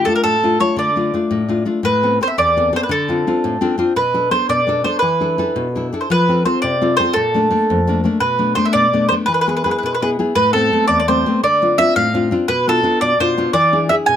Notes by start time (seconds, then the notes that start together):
0.05 A3 D4 F4 A4
0.15 A#4
0.23 A2 A4
0.43 A3 D4 F4
0.60 A3 D4 F4 C#5
0.77 D3 D5
0.96 A3 D4 F4
1.14 A3 D4 F4
1.31 A2
1.49 A3 D4 F4
1.65 A3 D4 F4
1.83 A2 B4
2.03 B3 C4 A4
2.21 B3 C4 A4 C5
2.28 E5
2.38 E2 D5
2.57 B3 C4 A4
2.73 B3 C4 A4 C5
2.83 B4
2.89 D3 A4
3.09 C4 D4 F4
3.27 C4 D4 F4
3.44 A2
3.61 C4 D4 F4 A4
3.78 C4 D4 F4 C5
3.96 B2 B4
4.14 B3 D4 A4
4.31 B3 D4 A4 C5
4.49 B2 D5
4.67 B3 D4 A4
4.84 B3 D4 A4 C5
4.99 E3 B4
5.20 D4 E4 A4
5.38 D4 E4 A4
5.56 B2
5.75 D4 E4 A4
5.93 D4 E4 A4
6.01 C5
6.10 F3 B4
6.29 C4 F4 A4
6.45 C4 F4 A4 C5
6.62 C3 D5
6.81 C4 F4 A4
6.97 C4 F4 A4 C5
7.13 A#2 A4
7.34 A3 A#3 D4
7.50 A3 A#3 D4
7.70 F2
7.87 A3 A#3 D4
8.04 A3 A#3 D4
8.20 B2 B4
8.38 A3 B3 D4
8.55 A3 B3 D4 C5
8.65 E5
8.73 B2 D5
8.93 A3 B3 D4
9.09 A3 B3 D4 C5
9.26 E3 B4
9.34 B4
9.41 B4
9.47 B3 E4 G#4
9.57 B4
9.64 B3 E4 G#4 B4
9.71 B4
9.78 B4
9.83 B2 B4
9.95 B4
10.02 B3 E4 G#4 B4
10.19 B3 E4 G#4
10.35 A2 B4
10.53 A3 B3 C4 A4
10.72 A3 B3 C4
10.88 E2 D5
11.00 D5
11.08 A3 C4 C5
11.26 A3 B3 C4
11.43 D3 D5
11.62 C4 D4 F4
11.78 C4 D4 F4 E5
11.96 A2 F5
12.14 C4 D4 F4
12.31 C4 D4 F4
12.48 B2 B4
12.67 B3 D4 F4 A4
12.83 B3 D4 F4
13.01 B2 D5
13.20 B2 D4 F4 C5
13.38 B3 D4 F4
13.53 E3 D5
13.73 D4 E4 G#4
13.89 D4 E4 G#4 E5
14.06 B2 G#5